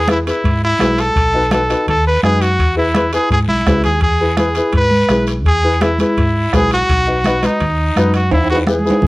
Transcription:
Already playing: fingered electric bass E2
0.07 upright piano E4 G#4 B4, trumpet E4, bombo rim, high conga, high timbale, short guiro
0.26 upright piano E4 G#4 B4, trumpet E4, high timbale, short guiro
0.44 fingered electric bass G#2, bombo low, high conga, high timbale, long guiro
0.64 trumpet E4
0.79 fingered electric bass B1, upright piano E4 G#4 B4, bombo rim, high conga, high timbale, low timbale, short guiro
0.98 trumpet A4, high timbale, short guiro
1.15 fingered electric bass B1, bombo low, high conga, high timbale, long guiro
1.34 upright piano D#4 F#4 B4
1.51 upright piano D#4 F#4 B4, trumpet A4, bombo rim, high conga, high timbale, short guiro
1.69 upright piano D#4 F#4 B4, high timbale, short guiro
1.87 fingered electric bass D#2, trumpet A4, bombo low, high conga, high timbale, long guiro
2.07 trumpet B4
2.23 fingered electric bass F#2, upright piano D#4 F#4 B4, trumpet G#4, bombo rim, high conga, high timbale, short guiro
2.41 trumpet F#4, high timbale, short guiro
2.59 fingered electric bass E2, bombo low, high conga, high timbale, long guiro
2.75 upright piano E4 G#4 B4, trumpet E4
2.94 upright piano E4 G#4 B4, bombo rim, high conga, high timbale, short guiro
3.12 upright piano E4 G#4 B4, trumpet G#4, high timbale, short guiro
3.30 fingered electric bass G#2, trumpet G#4, bombo low, high conga, high timbale, long guiro
3.48 fingered electric bass B1, trumpet E4, high conga
3.66 fingered electric bass C#2, upright piano E4 G#4 B4, bombo low, bombo rim, high conga, high timbale, low timbale, short guiro
3.84 fingered electric bass D#2, trumpet G#4, high timbale, short guiro
4.01 fingered electric bass E2, trumpet G#4, bombo low, high conga, high timbale, long guiro
4.20 upright piano E4 G#4 B4
4.37 upright piano E4 G#4 B4, trumpet G#4, bombo rim, high conga, high timbale, short guiro
4.55 upright piano E4 G#4 B4, high timbale, short guiro
4.73 fingered electric bass G#2, trumpet B4, bombo low, high conga, high timbale, long guiro
4.91 high conga
5.09 fingered electric bass B1, upright piano E4 G#4 B4, bombo rim, high conga, high timbale, short guiro
5.27 high timbale, short guiro
5.45 fingered electric bass E2, trumpet G#4, bombo low, high conga, high timbale, long guiro
5.63 upright piano E4 G#4 B4
5.81 upright piano E4 G#4 B4, trumpet E4, bombo rim, high conga, high timbale, short guiro
5.98 upright piano E4 G#4 B4, trumpet E4, high conga, high timbale, short guiro
6.17 fingered electric bass G#2, bombo low, high timbale, long guiro
6.53 fingered electric bass B1, upright piano E4 G#4 B4, trumpet G#4, bombo low, bombo rim, high conga, high timbale, low timbale, short guiro
6.71 trumpet F#4, high timbale, short guiro
6.89 fingered electric bass B1, bombo low, high conga, high timbale, long guiro
7.07 upright piano D#4 F#4 B4
7.24 upright piano D#4 F#4 B4, bombo rim, high conga, high timbale, short guiro
7.42 upright piano D#4 F#4 B4, trumpet D#4, high conga, high timbale, short guiro
7.60 fingered electric bass D#2, bombo low, high conga, high timbale, long guiro
7.96 fingered electric bass F#2, upright piano D#4 F#4 B4, bombo rim, high conga, high timbale, short guiro
8.14 trumpet F#4, high timbale, short guiro
8.31 fingered electric bass E2, trumpet E4, bombo low, high conga, high timbale, long guiro
8.44 high timbale
8.50 upright piano E4 G#4 B4, trumpet F#4
8.55 high timbale
8.67 upright piano E4 G#4 B4, trumpet G#4, bombo rim, high conga, short guiro
8.79 high conga
8.85 upright piano E4 G#4 B4, short guiro
8.90 high conga, high timbale
9.02 fingered electric bass G#2, bombo low, low conga

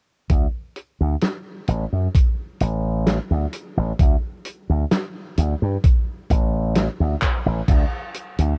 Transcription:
0.30 slap bass D2, kick, closed hi-hat
0.76 closed hi-hat
1.01 slap bass D2
1.21 snare, closed hi-hat
1.68 slap bass A1, closed hi-hat
1.92 slap bass F#2
2.15 kick, closed hi-hat
2.60 slap bass A1, closed hi-hat
3.06 snare, closed hi-hat
3.31 slap bass D2
3.53 closed hi-hat
3.77 slap bass A1
3.99 slap bass D2, kick, closed hi-hat
4.45 closed hi-hat
4.69 slap bass D2
4.91 snare, closed hi-hat
5.37 slap bass D2, closed hi-hat
5.62 slap bass G2
5.84 kick, closed hi-hat
6.30 slap bass A1, kick, closed hi-hat
6.75 snare, closed hi-hat
7.00 slap bass D2
7.22 kick, clap, closed hi-hat
7.46 slap bass A1
7.68 slap bass D2, kick, closed hi-hat, crash
8.15 closed hi-hat
8.39 slap bass D2, closed hi-hat

